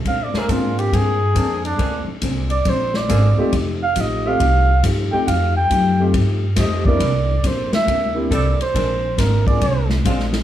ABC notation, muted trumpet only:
X:1
M:4/4
L:1/8
Q:"Swing" 1/4=138
K:Bb
V:1 name="Muted trumpet"
(3f d B F G _A3 D- | D z2 d c d3 | z f e f3 z g | f g3 z2 e d- |
d2 c =e2 z d c- | c2 B d2 z3 |]